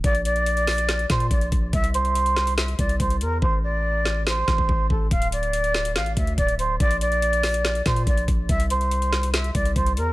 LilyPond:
<<
  \new Staff \with { instrumentName = "Flute" } { \time 4/4 \key bes \lydian \tempo 4 = 142 d''8 d''2 c''8 d''8 r8 | e''8 c''4. e''8 d''8 c''8 bes'8 | c''8 d''4. c''4. a'8 | f''8 d''4. f''8 e''8 d''8 c''8 |
d''8 d''2 c''8 d''8 r8 | e''8 c''4. e''8 d''8 c''8 bes'8 | }
  \new Staff \with { instrumentName = "808-style bass" } { \clef bass \time 4/4 \key bes \lydian bes,,2~ bes,,8 bes,8 bes,,8 bes,,8 | c,2~ c,8 c,8 c,8 e,8 | a,,2~ a,,8 a,,16 a,,16 a,,8 a,,8 | d,,2 a,,8 d,8 d,,4 |
bes,,2~ bes,,8 bes,8 bes,,8 bes,,8 | c,2~ c,8 c,8 c,8 e,8 | }
  \new DrumStaff \with { instrumentName = "Drums" } \drummode { \time 4/4 <hh bd>16 hh16 hh16 hh16 hh16 hh16 <hho sn>16 hh16 <hh sn>16 hh16 <hh bd sn>16 hh16 <hh bd>16 hh16 <hh bd>8 | <hh bd>16 hh16 hh16 hh16 hh16 hh16 sn16 hh16 <hh sn>16 hh16 <hh bd>16 hh16 <hh bd>16 hh16 hh8 | bd4 r8 sn8 sn8 <bd sn>16 bd16 bd8 bd8 | <hh bd>16 hh16 hh16 hh16 hh16 hh16 sn16 hh16 <hh sn>16 hh16 <hh bd>16 hh16 <hh bd>16 hh16 hh8 |
<hh bd>16 hh16 hh16 hh16 hh16 hh16 <hho sn>16 hh16 <hh sn>16 hh16 <hh bd sn>16 hh16 <hh bd>16 hh16 <hh bd>8 | <hh bd>16 hh16 hh16 hh16 hh16 hh16 sn16 hh16 <hh sn>16 hh16 <hh bd>16 hh16 <hh bd>16 hh16 hh8 | }
>>